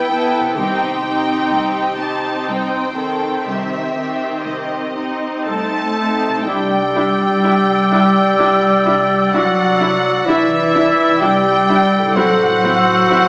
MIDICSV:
0, 0, Header, 1, 11, 480
1, 0, Start_track
1, 0, Tempo, 947867
1, 294, Time_signature, 3, 2, 24, 8
1, 1257, Tempo, 998336
1, 2697, Tempo, 977199
1, 3657, Tempo, 943396
1, 6634, End_track
2, 0, Start_track
2, 0, Title_t, "Flute"
2, 0, Program_c, 0, 73
2, 3183, Note_on_c, 0, 88, 47
2, 5081, Note_off_c, 0, 88, 0
2, 5110, Note_on_c, 0, 88, 53
2, 5578, Note_off_c, 0, 88, 0
2, 5590, Note_on_c, 0, 88, 51
2, 6058, Note_off_c, 0, 88, 0
2, 6068, Note_on_c, 0, 88, 55
2, 6634, Note_off_c, 0, 88, 0
2, 6634, End_track
3, 0, Start_track
3, 0, Title_t, "Violin section"
3, 0, Program_c, 1, 48
3, 0, Note_on_c, 1, 79, 76
3, 280, Note_off_c, 1, 79, 0
3, 286, Note_on_c, 1, 79, 74
3, 996, Note_off_c, 1, 79, 0
3, 1012, Note_on_c, 1, 81, 58
3, 1256, Note_on_c, 1, 79, 62
3, 1257, Note_off_c, 1, 81, 0
3, 1730, Note_off_c, 1, 79, 0
3, 1734, Note_on_c, 1, 76, 58
3, 2205, Note_on_c, 1, 75, 44
3, 2209, Note_off_c, 1, 76, 0
3, 2691, Note_on_c, 1, 81, 61
3, 2696, Note_off_c, 1, 75, 0
3, 3160, Note_off_c, 1, 81, 0
3, 3181, Note_on_c, 1, 79, 57
3, 4621, Note_off_c, 1, 79, 0
3, 4626, Note_on_c, 1, 78, 67
3, 5104, Note_off_c, 1, 78, 0
3, 5105, Note_on_c, 1, 76, 71
3, 5576, Note_off_c, 1, 76, 0
3, 5581, Note_on_c, 1, 79, 73
3, 6063, Note_off_c, 1, 79, 0
3, 6063, Note_on_c, 1, 78, 78
3, 6634, Note_off_c, 1, 78, 0
3, 6634, End_track
4, 0, Start_track
4, 0, Title_t, "Oboe"
4, 0, Program_c, 2, 68
4, 3188, Note_on_c, 2, 74, 45
4, 5084, Note_off_c, 2, 74, 0
4, 5099, Note_on_c, 2, 74, 45
4, 5573, Note_off_c, 2, 74, 0
4, 5588, Note_on_c, 2, 74, 46
4, 6062, Note_on_c, 2, 72, 54
4, 6069, Note_off_c, 2, 74, 0
4, 6634, Note_off_c, 2, 72, 0
4, 6634, End_track
5, 0, Start_track
5, 0, Title_t, "Violin section"
5, 0, Program_c, 3, 48
5, 0, Note_on_c, 3, 71, 57
5, 57, Note_off_c, 3, 71, 0
5, 59, Note_on_c, 3, 69, 49
5, 290, Note_off_c, 3, 69, 0
5, 292, Note_on_c, 3, 67, 51
5, 528, Note_off_c, 3, 67, 0
5, 534, Note_on_c, 3, 67, 51
5, 1244, Note_off_c, 3, 67, 0
5, 1256, Note_on_c, 3, 72, 48
5, 1488, Note_on_c, 3, 69, 43
5, 1492, Note_off_c, 3, 72, 0
5, 1728, Note_off_c, 3, 69, 0
5, 1732, Note_on_c, 3, 67, 34
5, 2698, Note_off_c, 3, 67, 0
5, 2700, Note_on_c, 3, 81, 49
5, 3165, Note_off_c, 3, 81, 0
5, 3191, Note_on_c, 3, 79, 47
5, 4626, Note_off_c, 3, 79, 0
5, 4631, Note_on_c, 3, 78, 59
5, 5096, Note_off_c, 3, 78, 0
5, 5106, Note_on_c, 3, 76, 55
5, 5583, Note_on_c, 3, 79, 62
5, 5586, Note_off_c, 3, 76, 0
5, 6064, Note_off_c, 3, 79, 0
5, 6069, Note_on_c, 3, 78, 63
5, 6634, Note_off_c, 3, 78, 0
5, 6634, End_track
6, 0, Start_track
6, 0, Title_t, "Clarinet"
6, 0, Program_c, 4, 71
6, 2690, Note_on_c, 4, 69, 50
6, 3191, Note_on_c, 4, 67, 52
6, 3199, Note_off_c, 4, 69, 0
6, 4626, Note_off_c, 4, 67, 0
6, 4631, Note_on_c, 4, 66, 62
6, 5094, Note_on_c, 4, 64, 54
6, 5102, Note_off_c, 4, 66, 0
6, 5575, Note_on_c, 4, 67, 60
6, 5583, Note_off_c, 4, 64, 0
6, 5920, Note_off_c, 4, 67, 0
6, 6075, Note_on_c, 4, 66, 69
6, 6634, Note_off_c, 4, 66, 0
6, 6634, End_track
7, 0, Start_track
7, 0, Title_t, "Viola section"
7, 0, Program_c, 5, 48
7, 61, Note_on_c, 5, 59, 45
7, 61, Note_on_c, 5, 64, 40
7, 291, Note_off_c, 5, 64, 0
7, 292, Note_off_c, 5, 59, 0
7, 298, Note_on_c, 5, 60, 45
7, 301, Note_on_c, 5, 63, 46
7, 527, Note_off_c, 5, 63, 0
7, 529, Note_off_c, 5, 60, 0
7, 533, Note_on_c, 5, 63, 45
7, 535, Note_on_c, 5, 60, 45
7, 1005, Note_off_c, 5, 63, 0
7, 1006, Note_off_c, 5, 60, 0
7, 1012, Note_on_c, 5, 63, 42
7, 1015, Note_on_c, 5, 60, 38
7, 1482, Note_off_c, 5, 63, 0
7, 1483, Note_off_c, 5, 60, 0
7, 1495, Note_on_c, 5, 60, 34
7, 1496, Note_on_c, 5, 51, 36
7, 1960, Note_off_c, 5, 60, 0
7, 1961, Note_off_c, 5, 51, 0
7, 1974, Note_on_c, 5, 60, 35
7, 1975, Note_on_c, 5, 51, 36
7, 2445, Note_off_c, 5, 60, 0
7, 2446, Note_off_c, 5, 51, 0
7, 2456, Note_on_c, 5, 63, 34
7, 2458, Note_on_c, 5, 60, 33
7, 2934, Note_off_c, 5, 63, 0
7, 2935, Note_off_c, 5, 60, 0
7, 2945, Note_on_c, 5, 60, 28
7, 2945, Note_on_c, 5, 63, 29
7, 3179, Note_off_c, 5, 60, 0
7, 3179, Note_off_c, 5, 63, 0
7, 3190, Note_on_c, 5, 62, 40
7, 3190, Note_on_c, 5, 64, 42
7, 3229, Note_off_c, 5, 62, 0
7, 3229, Note_off_c, 5, 64, 0
7, 3422, Note_on_c, 5, 62, 36
7, 3425, Note_on_c, 5, 64, 38
7, 3461, Note_off_c, 5, 62, 0
7, 3464, Note_off_c, 5, 64, 0
7, 3659, Note_on_c, 5, 62, 38
7, 3660, Note_on_c, 5, 64, 40
7, 3700, Note_off_c, 5, 62, 0
7, 3701, Note_off_c, 5, 64, 0
7, 3901, Note_on_c, 5, 64, 38
7, 3902, Note_on_c, 5, 62, 38
7, 3942, Note_off_c, 5, 64, 0
7, 3943, Note_off_c, 5, 62, 0
7, 4140, Note_on_c, 5, 62, 39
7, 4141, Note_on_c, 5, 64, 40
7, 4181, Note_off_c, 5, 62, 0
7, 4182, Note_off_c, 5, 64, 0
7, 4379, Note_on_c, 5, 62, 38
7, 4380, Note_on_c, 5, 64, 40
7, 4420, Note_off_c, 5, 62, 0
7, 4421, Note_off_c, 5, 64, 0
7, 4626, Note_on_c, 5, 62, 44
7, 4627, Note_on_c, 5, 64, 43
7, 4666, Note_off_c, 5, 62, 0
7, 4668, Note_off_c, 5, 64, 0
7, 4860, Note_on_c, 5, 62, 40
7, 4862, Note_on_c, 5, 64, 42
7, 4901, Note_off_c, 5, 62, 0
7, 4903, Note_off_c, 5, 64, 0
7, 5104, Note_on_c, 5, 62, 42
7, 5104, Note_on_c, 5, 64, 42
7, 5145, Note_off_c, 5, 62, 0
7, 5145, Note_off_c, 5, 64, 0
7, 5344, Note_on_c, 5, 62, 41
7, 5344, Note_on_c, 5, 64, 41
7, 5384, Note_off_c, 5, 62, 0
7, 5385, Note_off_c, 5, 64, 0
7, 5579, Note_on_c, 5, 64, 45
7, 5580, Note_on_c, 5, 62, 45
7, 5619, Note_off_c, 5, 64, 0
7, 5621, Note_off_c, 5, 62, 0
7, 5824, Note_on_c, 5, 64, 41
7, 5825, Note_on_c, 5, 62, 44
7, 5864, Note_off_c, 5, 64, 0
7, 5865, Note_off_c, 5, 62, 0
7, 6063, Note_on_c, 5, 60, 53
7, 6063, Note_on_c, 5, 64, 51
7, 6103, Note_off_c, 5, 60, 0
7, 6103, Note_off_c, 5, 64, 0
7, 6304, Note_on_c, 5, 60, 44
7, 6306, Note_on_c, 5, 64, 44
7, 6345, Note_off_c, 5, 60, 0
7, 6347, Note_off_c, 5, 64, 0
7, 6539, Note_on_c, 5, 60, 46
7, 6539, Note_on_c, 5, 64, 47
7, 6579, Note_off_c, 5, 60, 0
7, 6580, Note_off_c, 5, 64, 0
7, 6634, End_track
8, 0, Start_track
8, 0, Title_t, "Harp"
8, 0, Program_c, 6, 46
8, 201, Note_on_c, 6, 48, 41
8, 247, Note_on_c, 6, 60, 35
8, 270, Note_on_c, 6, 51, 35
8, 2129, Note_off_c, 6, 48, 0
8, 2173, Note_off_c, 6, 60, 0
8, 2195, Note_off_c, 6, 51, 0
8, 3092, Note_on_c, 6, 48, 36
8, 3116, Note_on_c, 6, 60, 32
8, 3137, Note_on_c, 6, 62, 30
8, 3159, Note_on_c, 6, 64, 30
8, 5057, Note_off_c, 6, 48, 0
8, 5081, Note_off_c, 6, 60, 0
8, 5103, Note_off_c, 6, 62, 0
8, 5125, Note_off_c, 6, 64, 0
8, 5974, Note_on_c, 6, 45, 43
8, 5996, Note_on_c, 6, 48, 36
8, 6018, Note_on_c, 6, 64, 36
8, 6041, Note_on_c, 6, 69, 37
8, 6634, Note_off_c, 6, 45, 0
8, 6634, Note_off_c, 6, 48, 0
8, 6634, Note_off_c, 6, 64, 0
8, 6634, Note_off_c, 6, 69, 0
8, 6634, End_track
9, 0, Start_track
9, 0, Title_t, "French horn section"
9, 0, Program_c, 7, 60
9, 2697, Note_on_c, 7, 57, 49
9, 3163, Note_off_c, 7, 57, 0
9, 3179, Note_on_c, 7, 55, 47
9, 4612, Note_on_c, 7, 54, 56
9, 4620, Note_off_c, 7, 55, 0
9, 5087, Note_off_c, 7, 54, 0
9, 5095, Note_on_c, 7, 52, 55
9, 5580, Note_off_c, 7, 52, 0
9, 5581, Note_on_c, 7, 55, 59
9, 6053, Note_off_c, 7, 55, 0
9, 6067, Note_on_c, 7, 54, 67
9, 6634, Note_off_c, 7, 54, 0
9, 6634, End_track
10, 0, Start_track
10, 0, Title_t, "Cello section"
10, 0, Program_c, 8, 48
10, 0, Note_on_c, 8, 40, 60
10, 225, Note_off_c, 8, 40, 0
10, 294, Note_on_c, 8, 36, 60
10, 704, Note_off_c, 8, 36, 0
10, 778, Note_on_c, 8, 36, 52
10, 1191, Note_off_c, 8, 36, 0
10, 1259, Note_on_c, 8, 36, 50
10, 1664, Note_off_c, 8, 36, 0
10, 1736, Note_on_c, 8, 36, 49
10, 2143, Note_off_c, 8, 36, 0
10, 2211, Note_on_c, 8, 36, 39
10, 2632, Note_off_c, 8, 36, 0
10, 2699, Note_on_c, 8, 36, 40
10, 2699, Note_on_c, 8, 57, 47
10, 3116, Note_off_c, 8, 36, 0
10, 3164, Note_off_c, 8, 57, 0
10, 3187, Note_on_c, 8, 55, 48
10, 4624, Note_off_c, 8, 55, 0
10, 4624, Note_on_c, 8, 54, 56
10, 5103, Note_off_c, 8, 54, 0
10, 5106, Note_on_c, 8, 52, 52
10, 5582, Note_on_c, 8, 55, 56
10, 5586, Note_off_c, 8, 52, 0
10, 6054, Note_off_c, 8, 55, 0
10, 6067, Note_on_c, 8, 54, 61
10, 6634, Note_off_c, 8, 54, 0
10, 6634, End_track
11, 0, Start_track
11, 0, Title_t, "Double bass section"
11, 0, Program_c, 10, 48
11, 3190, Note_on_c, 10, 36, 45
11, 3606, Note_off_c, 10, 36, 0
11, 3662, Note_on_c, 10, 36, 45
11, 4087, Note_off_c, 10, 36, 0
11, 4140, Note_on_c, 10, 36, 46
11, 4565, Note_off_c, 10, 36, 0
11, 4625, Note_on_c, 10, 36, 52
11, 5046, Note_off_c, 10, 36, 0
11, 5102, Note_on_c, 10, 36, 48
11, 5527, Note_off_c, 10, 36, 0
11, 5586, Note_on_c, 10, 36, 51
11, 6009, Note_off_c, 10, 36, 0
11, 6066, Note_on_c, 10, 33, 55
11, 6483, Note_off_c, 10, 33, 0
11, 6541, Note_on_c, 10, 33, 54
11, 6634, Note_off_c, 10, 33, 0
11, 6634, End_track
0, 0, End_of_file